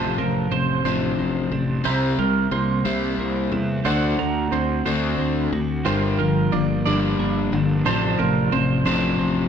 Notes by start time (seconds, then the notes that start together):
Already playing: A1 F2 A2 C3 F3 F4 C5 D5 A5
0.18 A1 F2 C3 F3 A#4
0.51 A1 F2 C3 C4 C5
0.85 A1 F2 C3 F3 D4 C5
1.19 A1 C4
1.52 A1 F2 C3 D4
1.84 C2 C3 G3 C4 G4 C5 E5 A#5
2.18 C2 C3 G3 A#4
2.51 C2 C3 G3 A#3 C5
2.85 C2 C3 G3 C4 E4 C5
3.19 C2 A#3
3.51 E2 C3 G3 E4
3.85 D2 D3 A3 D4 F#4 C5 D5 F#5
4.18 D2 D3 A3 A#5
4.52 D2 D3 A3 C4 C5
4.85 D2 D3 A3 D4 F#4 C5
5.18 D2 C4
5.52 D2 D3 A3 F#4
5.85 G1 G2 D3 G3 F4 A#4 C5 G5
6.19 G1 G2 D3 F3 A#4
6.52 G1 G2 D3 A#3 D5
6.86 G1 G2 D3 G3 D4 D5
7.19 G1 A#3
7.52 G1 G2 D3 D4
7.86 A1 F2 A2 C3 F3 C5 D5 A5
8.19 A1 F2 C3 F3 A#4
8.52 A1 F2 C3 C4 C5
8.85 A1 F2 C3 F3 D4 C5
9.19 A1 C4